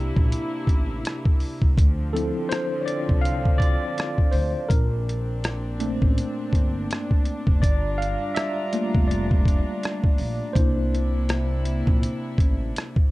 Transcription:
Already playing: C2 C3 A#3 D4 E4 G4
0.16 A#1, kick
0.32 closed hi-hat
0.67 A1, kick, closed hi-hat
1.05 cross-stick, closed hi-hat
1.25 kick
1.40 open hi-hat
1.62 C2, kick
1.77 D2 D3 F3 C4 D4, kick, closed hi-hat
2.13 F3 C4 E4 A4, closed hi-hat
2.49 C5, cross-stick, closed hi-hat
2.81 C#5
2.86 D5, closed hi-hat
3.09 C2, kick
3.21 F5, closed hi-hat
3.45 kick
3.58 D5, kick, closed hi-hat
3.98 cross-stick, closed hi-hat
4.18 kick
4.31 D2 C5, open hi-hat
4.69 A#1 A#2 C4 D4 A#4, kick, closed hi-hat
5.09 closed hi-hat
5.44 cross-stick, closed hi-hat
5.80 A3 C4 D4, closed hi-hat
6.02 A1, kick
6.18 closed hi-hat
6.53 G1, kick, closed hi-hat
6.91 cross-stick, closed hi-hat
7.11 kick
7.25 closed hi-hat
7.47 F1, kick
7.62 G1 G3 F4 D5 A#5, kick, closed hi-hat
7.98 F5
8.02 closed hi-hat
8.35 E5, cross-stick, closed hi-hat
8.73 A3 A#3 F4, closed hi-hat
8.95 F1, kick
9.08 D5, closed hi-hat
9.31 kick
9.45 kick, closed hi-hat
9.83 cross-stick, closed hi-hat
10.04 kick
10.18 A#1, open hi-hat
10.53 C2 C3 A#3 D4 E4 C5, kick, closed hi-hat
10.95 closed hi-hat
11.29 cross-stick, closed hi-hat
11.65 closed hi-hat
11.87 A#1, kick
12.03 closed hi-hat
12.38 A1, kick, closed hi-hat
12.76 cross-stick, closed hi-hat
12.96 kick

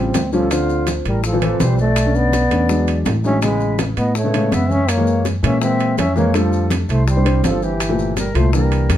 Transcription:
Already playing: A1 C#3 F3 G3 C4
0.14 D2, high bongo, low bongo, high conga, high timbale, low timbale, maracas
0.33 F3 G3 C#4 A4, maracas
0.51 D3 F3 C4 F4, high bongo, high conga, high timbale, maracas
0.69 high bongo, high conga, maracas
0.87 high bongo, high conga, high timbale, maracas
1.05 A1 G3 A#4, high bongo, high conga, high timbale, maracas
1.24 F3 A4, high bongo, high conga, maracas
1.33 E3 F3 C4
1.41 E3 F3 C4 A4, high bongo, high conga, high timbale, maracas
1.60 B1 G3 C5, high bongo, low bongo, high conga, high timbale, low timbale, maracas
1.78 A3 D5, maracas
1.96 high bongo, high conga, high timbale, maracas
2.06 D3 A3 C#4
2.15 B3 D5, high bongo, high conga, maracas
2.32 high bongo, high conga, high timbale, maracas
2.51 E2 D3 A3 C#4, high bongo, high conga, high timbale, maracas
2.69 F#3 G#3 D4, high bongo, high conga, maracas
2.87 high bongo, high conga, high timbale, maracas
3.05 A1, high bongo, low bongo, high conga, high timbale, low timbale, maracas
3.24 F#3 G#3 C#4 D4 E5, maracas
3.42 C#3 G#3 B3 B4, high bongo, high conga, high timbale, maracas
3.60 high bongo, high conga, maracas
3.79 high bongo, high conga, high timbale, maracas
3.97 A2 B3 D#5, high bongo, high conga, high timbale, maracas
4.15 A3 C#5, high bongo, high conga, maracas
4.24 C#3 G#3 B3
4.34 C#3 G#3 B3, high bongo, high conga, high timbale, maracas
4.52 F#2 B3 E5, high bongo, low bongo, high conga, high timbale, maracas
4.70 C#4 E5, high conga, maracas
4.89 A#3 C#5, high bongo, high timbale, maracas
4.97 E3 G#3 A#3
5.07 high bongo, high conga, maracas
5.25 high bongo, high conga, high timbale, maracas
5.43 A#2 E3 G#3 A#3 C#4 E5, high bongo, high conga, high timbale, maracas
5.61 E3 G#3 A#3 C4 E5, high bongo, high conga, maracas
5.79 high bongo, high conga, high timbale, maracas
5.98 F2 C#4 E5, high bongo, low bongo, high conga, high timbale, low timbale, maracas
6.15 E3 G#3 A#3 C#5, high conga, maracas
6.34 D3 F3 G3 A3 A4, high bongo, high conga, high timbale, maracas
6.52 high bongo, maracas
6.70 high bongo, high conga, high timbale, maracas
6.89 C2 A3 C5, high bongo, high timbale, maracas
7.07 G3 C5, high bongo, high conga, maracas
7.16 D3 G3 C4
7.25 D3 G3 C4, high bongo, high timbale, maracas
7.43 G1 F3 A4, high bongo, low bongo, high conga, high timbale, low timbale, maracas
7.62 E3 G4, maracas
7.80 high bongo, high conga, high timbale, maracas
7.89 A#2 F3 A3
7.98 high bongo, high conga, maracas
8.17 G3 A#4, high bongo, high conga, high timbale, maracas
8.34 C2 A#2 F3 A3 C5, high bongo, high conga, high timbale, maracas
8.53 D3 E3 G3 A#3 A#4, high bongo, high conga, maracas
8.71 high bongo, high conga, high timbale, maracas
8.89 F2, high bongo, low bongo, high conga, high timbale, maracas

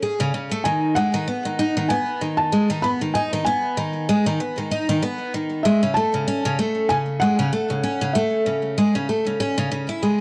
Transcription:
0.02 G#4
0.20 C#3
0.34 C#3
0.51 A3
0.64 D#3 G#5
0.95 G#3 F#5
1.14 D#3
1.28 B3
1.45 D#3
1.59 D#4
1.77 D#3
1.89 B3 G#5
2.21 D#3
2.37 A5
2.52 G#3
2.70 D#3
2.82 B3 B5
3.01 D#3
3.14 D#4 G#5
3.33 D#3
3.45 B3 G#5
3.77 D#3
4.09 G#3
4.26 D#3
4.40 B3
4.58 D#3
4.71 D#4
4.89 D#3
5.03 B3
5.34 D#3
5.63 G#3 E5
5.83 C#3
5.94 A3 A5
6.14 C#3
6.28 C#4
6.45 C#3
6.59 A3
6.89 C#3 G#5
7.20 G#3 F#5
7.39 C#3
7.53 A3
7.70 C#3
7.84 C#4
8.01 C#3
8.13 A3 E5
8.46 C#3
8.78 G#3
8.95 C#3
9.09 A3
9.26 C#3
9.40 C#4
9.58 C#3
9.71 C#3
9.89 E4
10.03 G#3

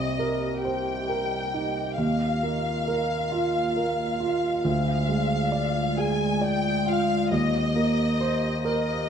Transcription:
Already playing: C2 A#3 C4 G4 D#5
0.19 A#4
0.65 C5 G5
1.09 A#4
1.54 D#4
1.98 D#2 F4 F5
2.43 A#3
2.88 A#4
3.32 F4
3.76 A#4
4.20 F4
4.64 D2 G#3 D5 F5
5.09 G#3
5.52 D5
5.97 G#4 G#5
6.41 D5 G5
6.86 F4 F5
7.31 D#2 A#3 G4 C5 D#5
7.76 A#3
8.21 C5
8.65 A#4 D#5

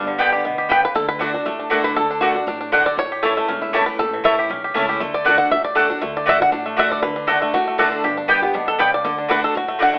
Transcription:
Already playing: G1 G2 G3 D4
0.07 D3
0.18 D3 G3 B3 G4 D5 G5
0.32 G4
0.44 D2 B2 B3
0.58 G4
0.69 C#3 B3 G4 B4 D5 G5
0.85 B4
0.95 D2 D3 A4
1.08 B4
1.19 D3 A3 D4 F#4 D5 F#5
1.34 D4 F#4
1.45 A1 A2 A3
1.59 D4
1.70 D3 A3 D4 F#4 D5 F#5
1.84 B4
1.96 D2 D3 A4
2.11 D4
2.21 D3 A3 D4 F#4 D5 F#5
2.34 D4 F#4
2.47 A1 A2 D4
2.61 D4
2.72 D3 A3 D4 F#4 D5 F#5
2.86 D5
2.97 A1 A2 C#5
3.12 G4
3.22 E3 A3 C#4 E4 A4 C#5 A5
3.37 A3
3.48 E1 E2 C#4
3.62 E4
3.73 E3 A3 C#4 E4 G4 C#5 A5
3.86 B4
3.99 A1 A2 A4
4.13 E3
4.24 A1 E3 A3 C#4 E4 C#5 E5 A5
4.39 G4
4.49 B1 E2 C#4
4.64 G4
4.74 C#2 E3 A3 C#4 E4 C#5 A5
4.89 G4
5.00 D2 D3 A3
5.14 D5
5.25 D3 A3 D4 F#4 D5 F#5
5.38 F#5
5.51 A1 A2 E5
5.64 D5
5.75 D3 A3 D4 F#4 A4 D5 F#5
5.89 D4 F#4
6.01 D2 D3 A3
6.17 D5
6.26 D3 A3 D4 F#4 D5 E5 F#5
6.40 D4 F#4 F#5
6.52 A1 A2 D4
6.66 A3
6.76 D3 A3 D4 F#4 D5 E5 F#5
6.92 D5
7.02 D2 D3 B4
7.16 D4
7.27 D3 A3 D4 F#4 A4 D5 F#5
7.42 A3
7.53 A1 A2 F#4
7.67 A3
7.78 D3 A3 D4 F#4 A4 D5 F#5
7.92 D4
8.04 G1 G2 G4
8.17 D4
8.28 D3 G3 B3 G4 D5 G5
8.42 B3 G4
8.54 B1 B2 D4
8.68 A4
8.79 C#2 C#3 B3 G4 B4 D5 G5
8.94 D5
9.04 D2 D3
9.18 D4
9.28 D3 A3 D4 F#4 B4 D5 F#5
9.44 A4
9.55 A1 A2 F#4
9.68 A3
9.79 D3 A3 D4 F#4 D5 F#5
9.94 A3

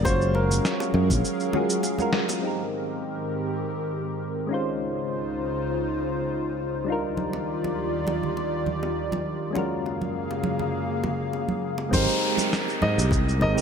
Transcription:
Already playing: F#1 F5
0.02 F#3 G#3 C#4 F4 G#4 A#4 C5, kick, high bongo, high conga, shaker
0.08 F#4 C#5
0.22 shaker
0.35 A#4, high bongo
0.51 high conga, shaker
0.65 snare, shaker
0.80 high bongo, shaker
0.94 F#2, high conga
1.10 A#1, kick, high bongo, low conga, shaker
1.25 shaker
1.40 shaker
1.53 G#3 C#4 F4 F#4 G#4, high bongo, high conga, low conga
1.70 shaker
1.83 high bongo, shaker
1.98 G#3 C#4 F4 F#4 A#4, high conga, shaker
2.13 snare
2.29 high bongo, shaker
2.40 G#2 D#3 G#3 C4 D#4 G4 A#4
2.45 G4 A#4
4.47 G#3 C#4 D#4
4.51 C#2 C#3 D#4 F4 C5
6.84 D#2 D#3 G3 D4 D#4 F4 G4 D5
6.90 F4 A#4
7.17 high conga
7.33 high bongo
7.64 high bongo, high conga
8.07 high bongo, high conga
8.23 low conga
8.37 high bongo
8.66 high conga, low conga
8.83 high bongo
9.12 high bongo, high conga
9.50 F#2 C#3 G#3 A#3 C#4 G#4 F5
9.55 F4 F#4 A#4, high bongo, high conga
9.86 high bongo
10.01 high conga
10.31 high bongo
10.44 high conga
10.59 high bongo, low conga
11.04 high bongo, high conga, low conga
11.33 high bongo
11.48 high conga
11.78 high bongo
11.89 G#1 G#3 C4 D#4 G4, kick, high bongo, high conga
11.93 G4 A#4 C5, downlifter, shaker
12.09 shaker
12.37 high bongo, high conga, shaker
12.53 snare, shaker
12.68 high bongo, shaker
12.82 G#2 D#5, high conga
12.98 C2, shaker
13.11 kick, high bongo, shaker
13.29 shaker
13.39 G#1 G#3 C4 D#4 G4 A#4 D#5, high bongo, high conga
13.54 G#3 C4 D#4 G4 A#4, low conga, shaker

